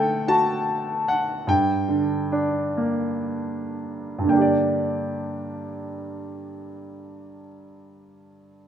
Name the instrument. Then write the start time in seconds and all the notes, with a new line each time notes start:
grand piano
Already playing: D3 A3 A4 F#5 G5
0.28 F#4 A5
1.08 F#5
1.47 G2 G5
1.88 D3
2.32 D4
2.77 A#3
4.19 G2
4.24 D3 A#3
4.29 D4 G5
4.37 G4
4.41 D5